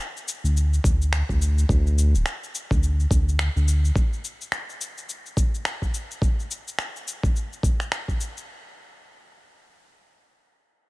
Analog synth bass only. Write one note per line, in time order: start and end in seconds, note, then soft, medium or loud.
0.44 0.79 D2 medium
0.84 1.23 D2 medium
1.29 1.65 D2 medium
1.69 2.16 D2 loud
2.15 2.23 D1 medium
2.71 3.06 D2 medium
3.11 3.49 D2 medium
3.56 3.91 D2 medium